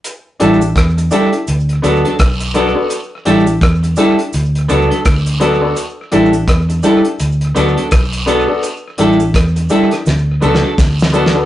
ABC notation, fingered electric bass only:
X:1
M:4/4
L:1/16
Q:"Swing 16ths" 1/4=84
K:D
V:1 name="Fingered electric bass" clef=bass
z2 A,,,2 E,,2 z2 D,,2 D,, z B,,,3 z | z2 A,,,2 E,,2 z2 D,,2 C,, z D,,4 | z2 A,,,2 E,,2 z2 D,,2 D,, z B,,,3 z | z2 A,,,2 E,,2 z2 D,,2 C,, z D,,4 |]